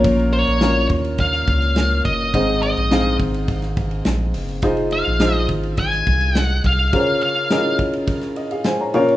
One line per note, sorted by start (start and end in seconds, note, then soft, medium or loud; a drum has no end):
0.00 0.43 A#1 loud
0.00 0.58 A#2 medium
0.00 0.56 A#3 loud
0.00 0.56 C#4 loud
0.00 0.56 F4 loud
0.00 0.56 A#4 loud
0.00 0.56 C#5 loud
0.04 kick loud
0.04 ride medium
0.19 ride soft
0.33 0.86 C#5 loud
0.33 ride medium
0.47 0.88 A#1 medium
0.47 ride soft
0.61 1.69 A#3 medium
0.61 1.69 C#4 medium
0.61 1.69 F4 medium
0.61 1.69 A#4 medium
0.61 1.69 C#5 medium
0.61 snare loud
0.61 ride medium
0.89 1.44 D#2 medium
0.89 kick loud
0.89 ride medium
1.05 ride medium
1.18 2.02 F5 loud
1.18 kick loud
1.18 ride medium
1.33 snare soft
1.47 2.01 C#2 medium
1.47 kick loud
1.47 ride medium
1.62 ride medium
1.76 snare loud
1.76 ride medium
1.91 ride soft
2.05 2.32 F#1 loud
2.05 2.61 D#5 loud
2.05 kick loud
2.05 ride medium
2.21 ride soft
2.34 2.74 G#1 loud
2.34 3.16 G#2 medium
2.34 2.87 C4 medium
2.34 2.87 D#4 medium
2.34 2.88 G#4 medium
2.34 2.88 C5 medium
2.34 2.88 D#5 medium
2.34 kick loud
2.34 ride medium
2.49 ride soft
2.63 3.16 D#5 medium
2.63 ride medium
2.77 3.17 A#1 medium
2.77 ride soft
2.91 3.98 C4 medium
2.91 3.98 D#4 medium
2.91 3.98 G#4 medium
2.91 3.99 C5 medium
2.91 3.99 F5 medium
2.91 snare loud
2.91 ride medium
3.19 4.02 G#1 loud
3.19 kick loud
3.19 ride medium
3.34 ride medium
3.48 kick loud
3.48 ride medium
3.62 snare soft
3.62 ride soft
3.77 kick loud
3.77 ride medium
3.91 ride medium
4.05 4.33 A#1 loud
4.05 snare loud
4.05 ride medium
4.34 4.62 F#1 loud
4.34 open hi-hat medium
4.34 ride medium
4.49 ride soft
4.62 5.03 F1 loud
4.62 5.17 D#4 medium
4.62 5.17 F4 medium
4.62 5.17 G#4 medium
4.62 5.17 C5 medium
4.62 5.17 D#5 loud
4.62 kick loud
4.62 hi-hat pedal medium
4.62 ride medium
4.77 ride soft
4.91 5.34 F5 loud
4.91 ride medium
5.05 5.47 A#1 loud
5.05 ride soft
5.20 6.27 D#4 medium
5.20 6.27 F4 medium
5.20 6.28 G#4 medium
5.20 6.28 C5 medium
5.20 6.28 D#5 medium
5.20 snare loud
5.20 ride medium
5.34 5.46 D#5 loud
5.34 ride soft
5.49 6.03 G#1 medium
5.49 kick loud
5.49 ride medium
5.63 ride medium
5.77 6.38 G#5 loud
5.77 kick loud
5.77 ride medium
5.92 snare soft
5.92 ride soft
6.07 6.60 C2 medium
6.07 kick loud
6.07 ride medium
6.21 ride medium
6.35 6.61 F#5 loud
6.35 snare loud
6.35 ride medium
6.50 ride soft
6.64 6.91 C2 loud
6.64 7.21 F5 loud
6.64 kick loud
6.64 ride medium
6.80 ride soft
6.93 7.75 C#3 medium
6.93 7.47 C#4 medium
6.93 7.46 F4 medium
6.93 7.47 G#4 medium
6.93 7.47 A#4 medium
6.93 7.00 C5 medium
6.93 kick loud
6.93 ride medium
7.00 7.50 C#5 medium
7.22 7.76 F5 medium
7.22 ride medium
7.37 ride soft
7.50 8.58 C#4 medium
7.50 7.57 E4 medium
7.50 8.37 G#4 medium
7.50 8.37 A#4 medium
7.50 8.35 D#5 medium
7.50 snare loud
7.50 ride medium
7.58 8.61 F4 medium
7.79 kick loud
7.79 ride medium
7.93 ride medium
8.07 kick loud
8.07 ride medium
8.21 snare soft
8.21 ride soft
8.36 8.50 D#5 medium
8.36 ride medium
8.51 8.65 G#4 medium
8.51 8.65 F5 medium
8.51 ride medium
8.64 8.79 C5 medium
8.64 8.79 G#5 medium
8.64 snare loud
8.64 ride medium
8.81 8.94 C#5 medium
8.81 9.07 A#5 medium
8.94 9.17 A#2 medium
8.94 9.17 A#3 loud
8.94 9.17 C#4 loud
8.94 9.17 F4 medium
8.94 9.17 A#4 medium
8.94 9.17 C#5 loud
8.94 ride medium
9.08 ride soft